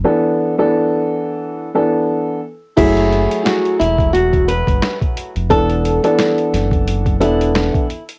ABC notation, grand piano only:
X:1
M:4/4
L:1/16
Q:"Swing 16ths" 1/4=88
K:F#m
V:1 name="Grand piano"
[E,B,DA]3 [E,B,DA]6 z [E,B,DA]4 z2 | [F,A,EG]12- [F,A,EG]3 z | [E,B,DA]3 [E,B,DA]6 z [E,B,DA]4 z2 |]